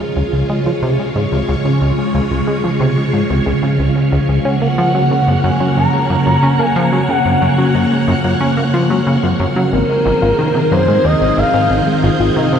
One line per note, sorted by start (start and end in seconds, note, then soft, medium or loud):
0.00 9.69 C#3 medium
0.00 12.59 F3 medium
0.00 4.41 G#3 medium
0.00 4.41 F4 medium
0.00 4.41 C#5 loud
0.00 12.59 F6 medium
0.16 0.23 C#2 loud
0.16 0.25 F4 medium
0.33 0.44 C#2 medium
0.33 0.49 F4 loud
0.50 0.64 C#3 loud
0.50 0.60 G#3 medium
0.66 0.73 F3 medium
0.83 0.98 C3 loud
0.99 1.15 G#3 medium
1.16 1.26 G#2 medium
1.32 1.43 C#2 medium
1.32 1.47 C4 medium
1.49 1.55 C#2 loud
1.65 1.81 C#3 medium
1.65 1.80 C#4 loud
1.81 1.92 C#2 medium
1.81 1.96 C#4 medium
1.98 2.07 G#3 loud
2.14 2.21 C#2 loud
2.14 2.23 F4 medium
2.31 2.42 C#2 medium
2.31 2.47 F4 loud
2.47 2.62 C#3 loud
2.47 2.58 G#3 medium
2.64 2.70 F3 medium
2.80 2.96 C3 loud
2.97 3.12 G#3 medium
3.13 3.24 G#2 medium
3.30 3.41 C#2 medium
3.30 3.45 C4 medium
3.46 3.53 C#2 loud
3.46 3.62 G#4 medium
3.63 3.78 C#3 medium
3.79 3.90 C#2 medium
3.79 3.94 C#4 medium
3.96 4.11 C#4 loud
4.12 4.19 C#2 loud
4.28 4.40 C#2 medium
4.28 4.38 G#4 loud
4.45 4.60 C#3 loud
4.45 9.69 A#3 medium
4.45 4.56 C#4 medium
4.45 9.69 C#5 loud
4.45 9.69 F#5 medium
4.45 5.46 F#5 loud
4.62 4.68 A#3 medium
4.78 4.94 F3 loud
4.94 5.05 F#3 medium
4.94 5.10 G#3 medium
5.11 5.22 C#3 medium
5.27 5.38 F#2 medium
5.27 5.42 C4 medium
5.44 5.51 F#2 loud
5.44 5.77 G#5 loud
5.60 5.76 F#3 medium
5.60 5.75 C#4 loud
5.77 5.88 F#2 medium
5.77 5.92 C#4 medium
5.77 6.64 A#5 loud
5.93 6.02 G#3 loud
6.10 6.17 F#2 loud
6.10 6.19 F4 medium
6.26 6.37 F#2 medium
6.26 6.42 F4 loud
6.43 6.58 C#3 loud
6.43 6.54 C#4 medium
6.59 6.66 A#3 medium
6.64 7.05 G#5 loud
6.76 6.92 F3 loud
6.92 7.03 F#3 medium
6.92 7.08 G#3 medium
7.09 7.20 C#3 medium
7.09 7.71 F#5 medium
7.25 7.36 F#2 medium
7.25 7.40 C4 medium
7.42 7.48 F#2 loud
7.58 7.74 F#3 medium
7.58 7.73 C#4 loud
7.75 7.86 F#2 medium
7.75 7.90 C#4 medium
7.91 8.00 G#3 loud
8.08 8.14 F#2 loud
8.08 8.17 F4 medium
8.24 8.35 F#2 medium
8.24 8.40 F4 loud
8.41 8.56 C#3 loud
8.41 8.52 C#4 medium
8.57 8.64 A#3 medium
8.74 8.89 F3 loud
8.90 9.01 F#3 medium
8.90 9.06 G#3 medium
9.07 9.18 C#3 medium
9.23 9.34 F#2 medium
9.23 9.38 C4 medium
9.40 9.46 F#2 loud
9.56 9.72 F#3 medium
9.56 9.71 C#4 loud
9.73 9.84 G#1 medium
9.73 12.59 D#3 medium
9.73 9.87 C4 medium
9.73 12.59 C4 medium
9.73 12.59 G#4 medium
9.73 10.73 A#4 loud
9.73 12.59 C5 loud
9.89 9.98 G#3 loud
10.05 10.12 G#1 loud
10.05 10.14 F4 medium
10.22 10.33 G#1 medium
10.22 10.38 F4 loud
10.39 10.53 C3 loud
10.39 10.49 D#3 medium
10.55 10.62 C3 medium
10.71 10.87 F#2 loud
10.71 11.06 C5 loud
10.88 10.99 G#2 medium
10.88 11.04 G#3 medium
11.04 11.15 D#2 medium
11.04 11.39 D#5 loud
11.21 11.32 G#1 medium
11.21 11.36 C4 medium
11.37 11.44 G#1 loud
11.37 12.04 F5 loud
11.54 11.70 G#2 medium
11.54 11.69 C4 medium
11.70 11.81 G#1 medium
11.70 11.85 C4 medium
11.87 11.96 G#3 loud
12.03 12.10 G#1 loud
12.03 12.12 F4 medium
12.20 12.31 G#1 medium
12.20 12.35 F4 loud
12.36 12.51 C3 loud
12.36 12.47 D#3 medium
12.36 12.59 D#5 loud
12.53 12.59 C3 medium